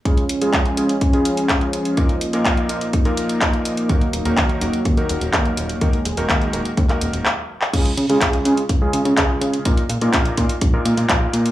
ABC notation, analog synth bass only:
X:1
M:4/4
L:1/16
Q:1/4=125
K:Dbmix
V:1 name="Analog synth bass" clef=bass
z16 | z16 | E,, z E,,, E,,, E,, z E,,, z E,, z E,,, E,,, E,, z E,,, z | E,, z E,,, E,,, E,, z E,,, z E,, z E,,, E,,, z4 |
D,, z D, D, D,, z D, z D,, z D, D, D,, z D, z | B,,, z B,, B,, B,,, z B,, z B,,, z B,, B,, B,,, z B,, z |]